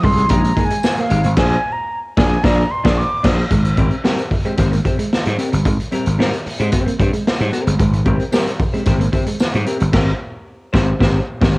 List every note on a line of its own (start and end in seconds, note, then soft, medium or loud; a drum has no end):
0.03 0.24 C2 medium
0.03 0.16 G#3 medium
0.03 0.32 C6 loud
0.03 muted clean electric guitar stroke soft
0.03 kick medium
0.03 open hi-hat medium
0.16 0.28 G#3 medium
0.16 0.29 D#4 medium
0.16 0.29 G#4 medium
0.16 closed hi-hat medium
0.29 0.51 A#1 medium
0.29 0.51 G#3 medium
0.29 0.43 D#4 medium
0.29 0.43 G#4 loud
0.29 0.67 A#5 loud
0.29 muted clean electric guitar stroke soft
0.29 kick loud
0.29 closed hi-hat loud
0.43 muted clean electric guitar stroke soft
0.43 closed hi-hat medium
0.56 0.70 G#3 medium
0.56 0.69 A#3 medium
0.56 0.70 D#4 medium
0.56 0.70 G#4 medium
0.56 kick medium
0.56 closed hi-hat medium
0.65 1.02 G#5 loud
0.70 0.82 G#3 medium
0.70 muted clean electric guitar stroke medium
0.70 closed hi-hat medium
0.83 snare loud
0.83 tambourine medium
0.97 1.09 A#3 medium
0.97 1.36 F5 medium
0.97 muted clean electric guitar stroke soft
0.97 closed hi-hat soft
1.09 1.22 G#1 loud
1.09 1.27 G#3 medium
1.09 1.24 D#4 medium
1.09 1.23 G4 medium
1.09 muted clean electric guitar stroke soft
1.09 closed hi-hat medium
1.24 1.35 G#1 medium
1.24 1.35 C4 medium
1.24 muted clean electric guitar stroke soft
1.24 closed hi-hat soft
1.36 1.56 A#1 loud
1.36 1.55 D4 loud
1.36 1.56 G#4 loud
1.36 1.56 C5 loud
1.36 1.74 G#5 loud
1.36 kick loud
1.36 snare loud
1.36 crash medium
1.72 1.99 A#5 medium
2.16 2.36 A#1 loud
2.16 2.36 D4 loud
2.16 2.36 G#4 loud
2.16 2.36 D5 medium
2.16 2.45 G#5 medium
2.16 kick loud
2.16 snare loud
2.43 2.63 A#1 loud
2.43 2.62 D4 loud
2.43 2.63 G#4 loud
2.43 2.63 D5 loud
2.43 2.72 A#5 loud
2.43 kick loud
2.43 snare loud
2.71 2.99 C6 medium
2.84 3.03 A#1 loud
2.84 3.02 D4 loud
2.84 3.03 G#4 loud
2.84 3.03 D5 loud
2.84 kick loud
2.84 snare loud
2.98 3.25 D6 loud
3.23 3.43 A#1 loud
3.23 3.42 D4 loud
3.23 3.43 G#4 loud
3.23 3.43 C5 loud
3.23 kick loud
3.23 snare loud
3.23 crash medium
3.51 3.72 G#1 loud
3.51 3.63 G#3 medium
3.51 kick loud
3.51 closed hi-hat medium
3.65 muted clean electric guitar stroke soft
3.65 closed hi-hat medium
3.77 3.89 G#1 medium
3.77 3.90 G3 medium
3.77 3.94 C4 medium
3.77 3.95 G4 medium
3.77 3.95 A#4 medium
3.77 kick loud
3.77 closed hi-hat medium
3.91 closed hi-hat soft
4.04 4.16 G3 medium
4.04 4.21 C4 medium
4.04 4.22 G4 medium
4.04 4.22 A#4 medium
4.04 snare loud
4.19 closed hi-hat soft
4.31 muted clean electric guitar stroke soft
4.31 kick medium
4.31 open hi-hat medium
4.45 4.56 G#3 medium
4.45 4.56 C4 medium
4.45 4.57 G4 medium
4.45 4.57 C5 medium
4.45 closed hi-hat soft
4.57 4.79 G#1 loud
4.57 4.75 C4 medium
4.57 4.72 G4 medium
4.57 4.72 C5 medium
4.57 kick medium
4.57 snare soft
4.57 closed hi-hat loud
4.72 4.83 A#3 medium
4.72 muted clean electric guitar stroke soft
4.72 closed hi-hat medium
4.85 4.98 C4 medium
4.85 4.99 G4 medium
4.85 4.98 C5 medium
4.85 muted clean electric guitar stroke soft
4.85 kick medium
4.85 closed hi-hat medium
4.99 5.10 G#3 medium
4.99 muted clean electric guitar stroke medium
4.99 closed hi-hat medium
5.13 snare loud
5.25 5.36 G#2 medium
5.25 5.36 G3 medium
5.25 muted clean electric guitar stroke soft
5.25 closed hi-hat soft
5.38 5.55 C4 medium
5.38 5.52 G4 medium
5.38 5.51 A#4 medium
5.38 muted clean electric guitar stroke soft
5.38 closed hi-hat medium
5.52 5.63 G1 medium
5.52 5.63 G3 medium
5.52 muted clean electric guitar stroke soft
5.52 closed hi-hat soft
5.65 5.76 G#1 loud
5.65 5.77 G#3 medium
5.65 kick loud
5.65 closed hi-hat medium
5.80 muted clean electric guitar stroke soft
5.80 closed hi-hat medium
5.91 6.04 G3 medium
5.91 6.08 C4 medium
5.91 6.09 G4 medium
5.91 6.09 A#4 loud
5.91 closed hi-hat medium
6.06 6.16 G#1 medium
6.06 closed hi-hat soft
6.18 6.30 G#2 medium
6.18 6.31 G3 medium
6.18 6.35 C4 medium
6.18 6.36 G4 medium
6.18 6.36 A#4 medium
6.18 snare loud
6.33 closed hi-hat soft
6.45 muted clean electric guitar stroke soft
6.45 muted slap bass stroke soft
6.45 open hi-hat medium
6.59 6.69 G#2 loud
6.59 6.70 G#3 medium
6.59 6.70 C4 soft
6.59 6.71 G4 medium
6.59 6.71 C5 medium
6.59 closed hi-hat soft
6.71 6.92 C4 medium
6.71 6.85 G4 medium
6.71 6.85 C5 loud
6.71 kick medium
6.71 closed hi-hat loud
6.86 6.97 A#3 medium
6.86 muted clean electric guitar stroke soft
6.86 muted slap bass stroke soft
6.86 closed hi-hat medium
6.99 7.10 G2 medium
6.99 7.12 C4 medium
6.99 7.12 G4 medium
6.99 7.12 C5 medium
6.99 muted clean electric guitar stroke soft
6.99 kick medium
6.99 closed hi-hat medium
7.13 7.24 G#3 medium
7.13 muted clean electric guitar stroke soft
7.13 closed hi-hat medium
7.27 snare loud
7.39 7.50 G#2 medium
7.39 7.51 G3 medium
7.39 muted clean electric guitar stroke medium
7.39 closed hi-hat soft
7.52 7.73 C4 medium
7.52 7.66 G4 medium
7.52 7.65 A#4 medium
7.52 muted clean electric guitar stroke soft
7.52 closed hi-hat medium
7.66 7.77 G1 medium
7.66 7.77 G#3 medium
7.66 muted clean electric guitar stroke soft
7.66 closed hi-hat medium
7.79 8.00 G#1 loud
7.79 7.91 G#3 medium
7.79 kick loud
7.79 closed hi-hat medium
7.93 muted clean electric guitar stroke soft
7.93 closed hi-hat medium
8.05 8.17 G#1 loud
8.05 8.18 G3 medium
8.05 8.23 C4 medium
8.05 8.23 G4 medium
8.05 8.23 A#4 loud
8.05 kick loud
8.05 closed hi-hat medium
8.19 closed hi-hat soft
8.32 8.45 G3 medium
8.32 8.49 C4 medium
8.32 8.50 G4 loud
8.32 8.50 A#4 medium
8.32 snare loud
8.32 tambourine medium
8.47 closed hi-hat medium
8.59 muted clean electric guitar stroke soft
8.59 kick loud
8.59 open hi-hat medium
8.73 8.84 G#3 medium
8.73 8.84 C4 medium
8.73 8.85 G4 medium
8.73 8.85 C5 medium
8.73 closed hi-hat medium
8.86 9.07 G#1 medium
8.86 9.03 C4 medium
8.86 9.00 G4 medium
8.86 9.00 C5 medium
8.86 kick loud
8.86 snare soft
8.86 closed hi-hat loud
9.00 9.11 A#3 medium
9.00 muted clean electric guitar stroke medium
9.00 closed hi-hat medium
9.12 9.26 C4 medium
9.12 9.27 G4 medium
9.12 9.27 C5 medium
9.12 muted clean electric guitar stroke soft
9.12 kick medium
9.12 closed hi-hat medium
9.26 9.37 G#3 medium
9.26 muted clean electric guitar stroke medium
9.26 closed hi-hat medium
9.40 snare loud
9.40 tambourine loud
9.53 9.64 G#2 loud
9.53 9.64 G3 medium
9.53 muted clean electric guitar stroke medium
9.53 closed hi-hat soft
9.66 9.83 C4 medium
9.66 9.80 G4 medium
9.66 9.79 A#4 medium
9.66 muted clean electric guitar stroke soft
9.66 closed hi-hat medium
9.80 9.91 G1 medium
9.80 9.91 G3 medium
9.80 muted clean electric guitar stroke soft
9.80 closed hi-hat soft
9.92 10.12 G#1 loud
9.92 10.11 C4 loud
9.92 10.12 G4 loud
9.92 10.12 A#4 loud
9.92 kick loud
9.92 snare loud
9.92 crash medium
10.73 10.92 G#1 loud
10.73 10.93 C4 loud
10.73 10.92 G4 loud
10.73 10.92 C5 loud
10.73 kick loud
10.73 snare loud
11.00 11.19 G#1 medium
11.00 11.19 C4 loud
11.00 11.19 G4 loud
11.00 11.19 C5 loud
11.00 kick loud
11.00 snare loud
11.41 11.58 G#1 loud
11.41 11.58 C4 loud
11.41 11.58 G4 loud
11.41 11.58 C5 loud
11.41 kick loud
11.41 snare loud